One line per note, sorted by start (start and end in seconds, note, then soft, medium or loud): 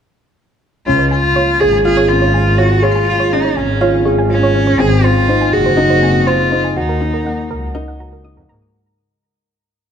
0.87 1.29 C#2 loud
0.87 1.10 C#4 medium
0.87 1.10 F4 loud
0.99 1.09 C#5 medium
1.11 1.61 F4 loud
1.11 1.15 G#5 medium
1.36 1.59 F4 medium
1.36 1.42 C#5 loud
1.60 3.38 G#1 medium
1.60 1.84 G#4 loud
1.60 1.84 G#4 medium
1.60 1.71 C#5 medium
1.73 1.77 G#5 medium
1.84 2.08 F4 loud
1.84 2.10 G#4 loud
1.97 2.04 C#5 loud
2.08 2.33 C#4 medium
2.08 2.60 F4 loud
2.22 2.32 C#5 medium
2.34 2.38 G#5 medium
2.58 2.82 F4 medium
2.58 2.85 F#4 loud
2.58 2.65 C#5 loud
2.82 3.34 F4 loud
2.82 3.06 G#4 medium
2.82 2.93 C#5 medium
2.95 2.99 G#5 medium
3.08 3.31 F4 medium
3.20 3.27 C#5 loud
3.32 3.56 C#4 medium
3.32 3.59 D#4 loud
3.45 3.55 C#5 medium
3.57 4.73 G#1 medium
3.57 4.06 C#4 medium
3.57 3.61 G#5 medium
3.81 4.05 F4 loud
3.81 3.88 C#5 loud
4.05 4.29 G#4 medium
4.05 4.16 C#5 medium
4.18 4.22 G#5 medium
4.29 4.81 C#4 loud
4.29 4.44 F4 medium
4.43 4.50 C#5 loud
4.54 4.69 C#4 medium
4.67 4.77 C#5 medium
4.79 5.22 G#1 loud
4.79 5.03 C4 medium
4.79 5.06 G#4 loud
4.79 4.84 G#5 medium
5.04 5.55 F4 loud
5.04 5.11 C5 loud
5.28 5.52 D#4 medium
5.28 5.39 C5 medium
5.41 5.45 G#5 medium
5.53 6.69 F#1 medium
5.53 6.29 F#4 loud
5.53 5.77 G#4 medium
5.66 5.73 C5 loud
5.77 6.01 D#4 loud
5.90 6.00 C5 medium
6.02 6.26 C4 medium
6.02 6.07 G#5 medium
6.27 6.78 F4 loud
6.27 6.34 C5 loud
6.52 6.75 D#4 medium
6.52 6.62 C5 medium
6.64 6.68 G#5 medium
6.76 7.31 D#2 medium
6.76 7.75 D#4 medium
6.76 7.00 F#4 medium
6.89 6.96 A#4 loud
7.01 7.24 D#4 medium
7.14 7.23 A#4 medium
7.25 7.49 A#3 medium
7.25 7.30 F#5 medium
7.50 8.66 C#2 medium
7.50 7.57 A#4 loud
7.75 7.98 D#4 loud
7.75 7.85 A#4 medium
7.88 7.92 F#5 medium
7.99 8.23 F#4 medium
7.99 8.07 A#5 medium
8.13 8.22 A#4 medium
8.24 8.38 D#4 medium
8.24 8.28 D#6 loud
8.36 8.44 F2 loud
8.36 8.43 A#4 medium
8.48 8.65 G#2 medium
8.48 8.63 A#3 medium
8.48 8.53 A#5 loud